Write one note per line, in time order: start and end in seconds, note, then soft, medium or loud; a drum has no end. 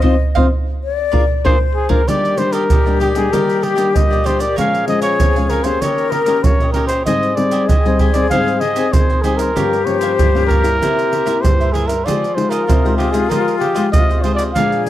0.00 0.14 C4 loud
0.00 0.14 D#4 loud
0.00 0.13 C5 medium
0.00 0.53 D#5 loud
0.00 0.13 D#5 medium
0.00 0.13 F5 medium
0.00 surdo medium
0.04 0.14 F4 medium
0.35 0.47 C4 medium
0.35 0.47 D#4 medium
0.35 0.47 F4 medium
0.35 0.46 C5 medium
0.35 0.46 D#5 medium
0.35 0.46 F5 loud
0.35 surdo loud
0.84 1.47 D5 loud
1.12 1.24 A#3 medium
1.12 1.23 D4 medium
1.12 1.24 F4 medium
1.12 1.23 G#4 medium
1.12 1.23 A#4 medium
1.12 1.23 D5 medium
1.12 surdo medium
1.45 1.55 A#3 loud
1.45 1.55 D4 medium
1.45 1.55 F4 medium
1.45 1.55 G#4 medium
1.45 1.55 A#4 medium
1.45 1.59 C5 medium
1.45 2.06 C5 medium
1.45 1.55 D5 medium
1.45 surdo loud
1.75 1.92 G#4 medium
1.89 2.01 A#3 loud
1.89 2.01 D4 medium
1.89 2.01 F4 medium
1.89 2.01 G#4 medium
1.89 2.00 A#4 medium
1.89 2.09 A#4 medium
1.89 2.00 D5 medium
1.89 surdo loud
2.07 2.67 D#3 medium
2.07 2.34 G3 medium
2.07 2.34 A#3 medium
2.07 2.35 D4 medium
2.07 4.59 G4 medium
2.07 2.52 G4 medium
2.07 2.40 D5 loud
2.07 2.53 D5 medium
2.07 pandeiro medium
2.07 maracas medium
2.07 surdo medium
2.25 pandeiro soft
2.25 maracas soft
2.38 2.68 G3 medium
2.38 2.68 A#3 medium
2.38 2.68 D4 medium
2.38 2.54 C5 medium
2.38 pandeiro medium
2.38 maracas medium
2.53 2.63 D4 medium
2.53 2.63 G4 medium
2.53 3.00 A#4 loud
2.53 2.63 D5 medium
2.53 2.63 D#5 medium
2.53 pandeiro medium
2.53 maracas medium
2.70 3.30 A#2 medium
2.70 2.84 D4 soft
2.70 2.85 G4 soft
2.70 2.84 D5 medium
2.70 2.85 D#5 soft
2.70 pandeiro medium
2.70 maracas medium
2.70 surdo loud
2.85 3.12 G3 medium
2.85 3.13 A#3 medium
2.85 3.13 D4 medium
2.85 2.99 G4 soft
2.85 3.00 D5 soft
2.85 3.00 D#5 soft
2.85 pandeiro soft
2.85 maracas soft
3.00 3.15 D4 medium
3.00 3.15 G4 medium
3.00 3.08 G4 medium
3.00 3.13 D5 medium
3.00 3.14 D#5 medium
3.00 pandeiro medium
3.15 3.27 G3 medium
3.15 3.27 A#3 medium
3.15 3.28 D4 medium
3.15 3.31 G4 soft
3.15 3.35 G#4 medium
3.15 3.30 D5 soft
3.15 3.31 D#5 soft
3.15 pandeiro medium
3.15 maracas medium
3.33 3.92 D#3 medium
3.33 3.75 G3 soft
3.33 3.75 A#3 medium
3.33 3.62 G4 medium
3.33 3.65 A#4 medium
3.33 3.62 D5 medium
3.33 3.62 D#5 medium
3.33 pandeiro medium
3.33 maracas medium
3.33 surdo medium
3.49 pandeiro soft
3.49 maracas soft
3.62 3.75 D4 soft
3.62 3.75 G4 soft
3.62 3.97 G4 medium
3.62 3.76 D5 medium
3.62 3.76 D#5 soft
3.62 pandeiro medium
3.76 4.20 G3 medium
3.76 4.21 A#3 medium
3.76 3.87 D4 medium
3.76 4.21 D4 medium
3.76 3.87 G4 medium
3.76 3.87 D5 medium
3.76 3.87 D#5 medium
3.76 pandeiro medium
3.76 maracas medium
3.95 4.54 A#2 medium
3.95 4.27 D#5 loud
3.95 pandeiro medium
3.95 maracas medium
3.95 surdo loud
4.10 4.23 G4 soft
4.10 4.25 D5 medium
4.10 4.24 D#5 soft
4.10 pandeiro soft
4.10 maracas soft
4.24 4.44 G3 soft
4.24 4.44 A#3 medium
4.24 4.39 D4 medium
4.24 4.44 D4 medium
4.24 4.39 G4 medium
4.24 4.42 C5 medium
4.24 4.38 D5 medium
4.24 4.38 D#5 medium
4.24 pandeiro medium
4.24 maracas medium
4.39 4.56 G4 soft
4.39 4.55 D5 soft
4.39 4.57 D5 medium
4.39 4.55 D#5 soft
4.39 pandeiro medium
4.39 maracas medium
4.56 5.17 A#2 medium
4.56 4.84 F3 medium
4.56 4.84 G#3 medium
4.56 4.84 C#4 medium
4.56 5.84 G#4 loud
4.56 5.00 A#4 medium
4.56 5.01 C#5 medium
4.56 5.01 F5 medium
4.56 4.87 F5 loud
4.56 5.02 G#5 medium
4.56 pandeiro medium
4.56 maracas medium
4.56 surdo medium
4.74 pandeiro soft
4.74 maracas soft
4.87 5.30 F3 medium
4.87 5.30 G#3 medium
4.87 5.30 C#4 medium
4.87 5.02 D#5 medium
4.87 pandeiro medium
5.02 5.12 A#4 medium
5.02 5.51 C#5 medium
5.02 5.12 C#5 medium
5.02 5.12 F5 medium
5.02 5.13 G#5 medium
5.02 pandeiro medium
5.02 maracas medium
5.20 5.79 F2 medium
5.20 5.34 A#4 medium
5.20 5.34 C#5 medium
5.20 5.35 F5 medium
5.20 5.35 G#5 medium
5.20 pandeiro medium
5.20 maracas medium
5.20 surdo medium
5.36 5.62 F3 medium
5.36 5.62 G#3 medium
5.36 5.63 C#4 medium
5.36 5.49 C#5 soft
5.36 5.49 F5 soft
5.36 5.50 G#5 medium
5.36 pandeiro soft
5.36 maracas soft
5.49 5.65 A#4 medium
5.49 5.64 C#5 medium
5.49 5.64 F5 medium
5.49 5.63 G#5 medium
5.49 pandeiro medium
5.64 6.23 A#3 medium
5.64 6.23 C#4 medium
5.64 6.24 G4 medium
5.64 5.83 C5 medium
5.64 5.80 C#5 soft
5.64 5.80 F5 soft
5.64 5.80 G#5 soft
5.64 pandeiro medium
5.64 maracas medium
5.81 6.41 D#3 medium
5.81 6.11 D#4 medium
5.81 6.11 G4 medium
5.81 6.80 A#4 loud
5.81 6.12 C#5 loud
5.81 6.12 C#5 medium
5.81 6.12 D#5 medium
5.81 pandeiro medium
5.81 maracas medium
5.81 surdo medium
5.98 pandeiro soft
5.98 maracas soft
6.11 6.26 D#4 soft
6.11 6.27 G4 medium
6.11 6.45 A#4 medium
6.11 6.27 C#5 soft
6.11 6.27 D#5 medium
6.11 pandeiro medium
6.26 6.70 A#3 medium
6.26 6.70 C#4 medium
6.26 6.37 D#4 medium
6.26 6.37 G4 medium
6.26 6.70 G4 medium
6.26 6.38 C#5 medium
6.26 6.38 D#5 medium
6.26 pandeiro medium
6.26 maracas medium
6.43 7.04 A#2 medium
6.43 6.72 C#5 loud
6.43 pandeiro medium
6.43 maracas medium
6.43 surdo loud
6.60 6.74 G4 soft
6.60 6.74 C#5 soft
6.60 6.75 D#5 soft
6.60 pandeiro soft
6.60 maracas soft
6.72 7.01 A#3 medium
6.72 7.01 C#4 medium
6.72 6.89 D#4 medium
6.72 6.90 G4 medium
6.72 7.02 G4 medium
6.72 6.86 A#4 medium
6.72 6.89 C#5 medium
6.72 6.88 D#5 medium
6.72 pandeiro medium
6.87 7.03 C5 medium
6.87 7.05 C#5 soft
6.87 7.05 D#5 soft
6.87 pandeiro medium
6.87 maracas medium
6.91 7.06 G4 soft
7.06 7.66 G#2 medium
7.06 7.33 G3 medium
7.06 7.33 C4 medium
7.06 7.34 D#4 medium
7.06 9.58 G#4 loud
7.06 7.51 C5 medium
7.06 7.37 D#5 loud
7.06 7.51 D#5 medium
7.06 7.51 G#5 medium
7.06 pandeiro medium
7.06 maracas medium
7.06 surdo medium
7.23 pandeiro soft
7.23 maracas soft
7.36 7.67 G3 medium
7.36 7.67 C4 medium
7.36 7.67 D#4 medium
7.36 7.69 D5 medium
7.36 pandeiro medium
7.51 7.62 G4 medium
7.51 7.62 C5 medium
7.51 7.62 D#5 medium
7.51 7.62 G#5 medium
7.51 pandeiro medium
7.51 maracas medium
7.67 8.29 D#3 medium
7.67 7.83 G4 medium
7.67 7.84 C5 medium
7.67 8.00 D#5 loud
7.67 7.84 D#5 soft
7.67 7.84 G#5 medium
7.67 pandeiro medium
7.67 maracas medium
7.67 surdo loud
7.85 8.11 G3 medium
7.85 8.12 C4 medium
7.85 8.12 D#4 medium
7.85 7.99 C5 soft
7.85 8.00 D#5 soft
7.85 8.00 G#5 soft
7.85 pandeiro soft
7.85 maracas soft
7.99 8.14 G4 medium
7.99 8.15 C5 medium
7.99 8.14 D#5 medium
7.99 8.14 G#5 medium
7.99 pandeiro medium
7.99 surdo medium
8.12 8.26 G3 medium
8.12 8.26 C4 medium
8.12 8.26 D#4 medium
8.12 8.28 D5 medium
8.12 8.30 D#5 soft
8.12 8.30 G#5 soft
8.12 pandeiro medium
8.12 maracas medium
8.17 8.30 C5 soft
8.30 8.91 G#2 medium
8.30 8.61 G3 medium
8.30 8.61 C4 medium
8.30 8.61 D#4 medium
8.30 8.61 C5 medium
8.30 8.62 D#5 medium
8.30 8.62 F5 medium
8.30 8.62 G#5 medium
8.30 pandeiro medium
8.30 maracas medium
8.30 surdo medium
8.48 pandeiro soft
8.48 maracas soft
8.60 8.74 G4 soft
8.60 8.75 C5 soft
8.60 8.94 D#5 medium
8.60 8.75 D#5 soft
8.60 8.76 G#5 medium
8.60 pandeiro medium
8.75 9.19 C4 medium
8.75 9.20 D#4 medium
8.75 8.86 G4 medium
8.75 8.86 C5 medium
8.75 8.86 D#5 medium
8.75 8.87 G#5 medium
8.75 pandeiro medium
8.75 maracas medium
8.93 9.53 D#3 medium
8.93 9.24 C5 medium
8.93 pandeiro medium
8.93 maracas medium
8.93 surdo loud
9.10 9.23 C5 soft
9.10 9.24 D#5 soft
9.10 9.24 G#5 soft
9.10 pandeiro soft
9.10 maracas soft
9.22 9.51 G3 medium
9.22 9.51 C4 medium
9.22 9.51 D#4 medium
9.22 9.39 G4 medium
9.22 9.39 G#4 medium
9.22 9.39 C5 medium
9.22 9.39 D#5 medium
9.22 9.38 G#5 medium
9.22 pandeiro medium
9.22 maracas medium
9.37 9.87 A#4 medium
9.37 9.55 C5 soft
9.37 9.55 D#5 soft
9.37 9.54 G#5 soft
9.37 pandeiro medium
9.37 maracas medium
9.55 10.15 G2 medium
9.55 9.75 F3 medium
9.55 9.75 A#3 medium
9.55 9.75 C#4 medium
9.55 10.00 G4 medium
9.55 10.80 G4 medium
9.55 10.01 A#4 medium
9.55 10.01 C#5 medium
9.55 10.01 F5 medium
9.55 pandeiro medium
9.55 maracas medium
9.55 surdo medium
9.73 pandeiro soft
9.73 maracas soft
9.85 10.29 F3 medium
9.85 10.29 A#3 medium
9.85 10.29 C#4 medium
9.85 10.01 C#5 medium
9.85 pandeiro medium
9.99 10.11 G4 medium
9.99 10.12 A#4 medium
9.99 10.46 C5 medium
9.99 10.12 C#5 medium
9.99 10.12 F5 medium
9.99 pandeiro medium
9.99 maracas medium
10.18 10.78 G2 medium
10.18 10.33 G4 medium
10.18 10.33 A#4 medium
10.18 10.34 C#5 soft
10.18 10.34 F5 medium
10.18 pandeiro medium
10.18 maracas medium
10.18 surdo loud
10.34 10.61 F3 medium
10.34 10.61 A#3 medium
10.34 10.61 C#4 medium
10.34 10.48 A#4 soft
10.34 10.48 C#5 soft
10.34 10.49 F5 medium
10.34 pandeiro soft
10.34 maracas soft
10.46 10.64 G4 medium
10.46 11.43 A#4 loud
10.46 10.64 A#4 medium
10.46 10.64 C#5 medium
10.46 10.62 F5 medium
10.50 pandeiro medium
10.50 surdo medium
10.63 11.22 A#3 medium
10.63 11.22 E4 medium
10.63 11.22 G4 medium
10.63 10.80 A#4 soft
10.63 10.80 C#5 soft
10.63 10.79 F5 soft
10.63 pandeiro medium
10.63 maracas medium
10.81 11.41 C3 medium
10.81 11.10 E4 medium
10.81 11.71 G4 medium
10.81 11.11 A#4 medium
10.81 11.12 C5 medium
10.81 11.12 E5 medium
10.81 pandeiro medium
10.81 maracas medium
10.81 surdo medium
10.99 pandeiro soft
10.99 maracas soft
11.12 11.25 E4 soft
11.12 11.25 A#4 soft
11.12 11.25 C5 medium
11.12 11.26 E5 medium
11.12 pandeiro medium
11.26 11.69 A#3 medium
11.26 11.36 E4 medium
11.26 11.69 E4 medium
11.26 11.69 G4 medium
11.26 11.36 A#4 medium
11.26 11.36 C5 medium
11.26 11.37 E5 medium
11.26 pandeiro medium
11.26 maracas medium
11.41 12.03 G2 medium
11.41 11.74 C5 medium
11.41 pandeiro medium
11.41 maracas medium
11.41 surdo loud
11.60 11.73 A#4 soft
11.60 11.74 C5 soft
11.60 11.74 E5 soft
11.60 pandeiro soft
11.60 maracas soft
11.73 11.93 A#3 soft
11.73 11.89 E4 medium
11.73 11.93 E4 soft
11.73 11.93 G4 medium
11.73 11.88 G#4 medium
11.73 11.88 A#4 medium
11.73 11.88 C5 medium
11.73 11.86 E5 medium
11.73 pandeiro medium
11.87 12.06 A#4 medium
11.87 12.05 A#4 soft
11.87 12.04 C5 soft
11.87 12.03 E5 soft
11.87 pandeiro medium
11.87 maracas medium
12.05 12.66 F3 medium
12.05 12.25 G#3 medium
12.05 12.25 D#4 medium
12.05 12.49 F4 medium
12.05 14.57 F4 loud
12.05 12.25 G4 medium
12.05 12.50 G#4 medium
12.05 12.50 C5 medium
12.05 12.37 D5 medium
12.05 pandeiro medium
12.05 maracas medium
12.05 surdo medium
12.24 pandeiro soft
12.24 maracas soft
12.35 12.66 G#3 medium
12.35 12.66 D#4 medium
12.35 12.67 G4 medium
12.35 12.51 C5 medium
12.35 pandeiro medium
12.50 12.61 F4 medium
12.50 12.61 G#4 medium
12.50 12.96 A#4 medium
12.50 12.61 C5 medium
12.50 12.61 D#5 medium
12.50 pandeiro medium
12.50 maracas medium
12.67 13.28 C3 medium
12.67 12.82 F4 medium
12.67 12.83 G#4 medium
12.67 12.83 C5 medium
12.67 12.83 D#5 medium
12.67 pandeiro medium
12.67 maracas medium
12.67 surdo loud
12.85 13.11 G#3 medium
12.85 13.11 D#4 medium
12.85 13.11 G4 medium
12.85 12.97 G#4 soft
12.85 12.98 C5 soft
12.85 12.99 D#5 soft
12.85 pandeiro soft
12.85 maracas soft
12.97 13.13 F4 medium
12.97 13.13 G4 medium
12.97 13.13 G#4 medium
12.97 13.13 C5 medium
12.97 13.11 D#5 medium
12.97 pandeiro medium
13.12 13.25 G#3 medium
13.12 13.25 D#4 medium
13.12 13.26 G4 medium
13.12 13.31 G#4 medium
13.12 13.29 G#4 soft
13.12 13.29 C5 soft
13.12 13.28 D#5 soft
13.12 pandeiro medium
13.12 maracas medium
13.29 13.91 F3 medium
13.29 13.73 G#3 medium
13.29 13.73 D#4 medium
13.29 13.58 F4 medium
13.29 13.74 G4 medium
13.29 13.59 G#4 medium
13.29 13.58 A#4 medium
13.29 13.60 C5 medium
13.29 13.60 D#5 medium
13.29 pandeiro medium
13.29 maracas medium
13.29 surdo medium
13.48 pandeiro soft
13.48 maracas soft
13.59 13.73 F4 soft
13.59 13.89 G4 medium
13.59 13.74 G#4 soft
13.59 13.74 C5 medium
13.59 13.74 D#5 medium
13.59 pandeiro medium
13.75 14.19 G#3 medium
13.75 14.19 D#4 medium
13.75 13.85 F4 medium
13.75 14.20 G4 medium
13.75 13.86 G#4 medium
13.75 13.86 C5 medium
13.75 13.86 D#5 medium
13.75 pandeiro medium
13.75 maracas medium
13.92 14.53 C3 medium
13.92 14.23 D#5 medium
13.92 pandeiro medium
13.92 maracas medium
13.92 surdo loud
14.09 14.24 G#4 soft
14.09 14.24 C5 soft
14.09 14.24 D#5 soft
14.09 pandeiro soft
14.09 maracas soft
14.22 14.50 G#3 medium
14.22 14.51 D#4 medium
14.22 14.39 F4 medium
14.22 14.51 G4 medium
14.22 14.39 G#4 medium
14.22 14.34 C5 medium
14.22 14.38 C5 medium
14.22 14.38 D#5 medium
14.22 pandeiro medium
14.35 14.43 D5 medium
14.35 pandeiro medium
14.35 maracas medium
14.39 14.55 G#4 soft
14.39 14.54 C5 soft
14.39 14.54 D#5 soft
14.53 14.90 A#2 medium
14.53 14.90 F3 medium
14.53 14.90 G#3 medium
14.53 14.90 D4 medium
14.53 14.90 G#4 loud
14.53 14.90 A#4 medium
14.53 14.90 D5 medium
14.53 14.83 F5 loud
14.53 14.90 G#5 medium
14.53 pandeiro medium
14.53 maracas medium
14.53 surdo medium
14.72 pandeiro soft
14.72 maracas soft
14.86 pandeiro medium
14.86 maracas medium